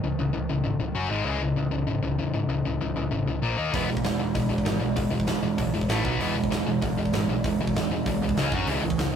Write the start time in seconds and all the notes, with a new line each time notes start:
0.04 C#2 C#3 E3
0.19 C#2 C#3 E3
0.33 C#2 C#3 E3
0.49 C#2 C#3 E3
0.64 G#1 C#3 E3
0.80 C#2 C#3 E3
0.95 F#1 F#3 C#4 F#4
1.09 G#1 G#2 D#3 G#3
1.25 C#2 C#3 E3 G#3
1.40 C#2 C#3 E3
1.56 C#2 C#3 E3
1.71 C#2 C#3 E3
1.87 G#1 C#3 E3
2.03 C#2 C#3 E3
2.18 E2 C#3 E3
2.33 G#2 C#3 E3
2.48 C#2 C#3 E3
2.65 C#2 C#3 E3
2.81 C#2 C#3 E3
2.96 C#2 C#3 E3
3.11 G#1 C#3 E3
3.26 C#2 C#3 E3
3.42 A#1 A#2 F3 A#3
3.57 D#2 D#3 A#3 D#4
3.73 E1 E3 G#3 B3, kick, open hi-hat
3.88 E1 E3 G#3
3.97 kick
4.04 E1 E3 G#3, snare, open hi-hat
4.19 E1 E3 G#3
4.35 B1 E3 G#3, kick, open hi-hat
4.49 E1 E3 G#3
4.58 kick
4.65 G#1 E3 G#3, snare, open hi-hat
4.79 B1 E3 G#3
4.96 E1 E3 G#3, kick, open hi-hat
5.11 E1 E3 G#3
5.20 kick
5.27 E1 E3 G#3, snare, open hi-hat
5.43 E1 E3 G#3
5.58 B1 E3 G#3, kick, open hi-hat
5.72 E1 E3 G#3
5.81 kick
5.89 A1 A2 E3 A3, snare, open hi-hat
6.04 B1 B2 F#3 B3, kick
6.19 E1 E3 G#3 B3, open hi-hat
6.35 E1 E3 G#3
6.44 kick
6.51 E1 E3 G#3, snare, open hi-hat
6.66 E1 E3 G#3
6.82 B1 E3 G#3, kick, open hi-hat
6.98 E1 E3 G#3
7.06 kick
7.13 G#1 E3 G#3, snare, open hi-hat
7.28 B1 E3 G#3
7.44 E1 E3 G#3, kick, open hi-hat
7.59 E1 E3 G#3
7.67 kick
7.75 E1 E3 G#3, snare, open hi-hat
7.91 E1 E3 G#3
8.06 B1 E3 G#3, kick, open hi-hat
8.22 C2 E3 G#3
8.29 kick
8.36 C#2 C#3 G#3 C#4, snare, open hi-hat
8.52 F#1 F#3 C#4 F#4, kick
8.67 C#2 C#3 E3 G#3, open hi-hat
8.82 C#2 C#3 E3
8.90 kick
8.98 C#2 C#3 E3, snare, open hi-hat
9.12 C#2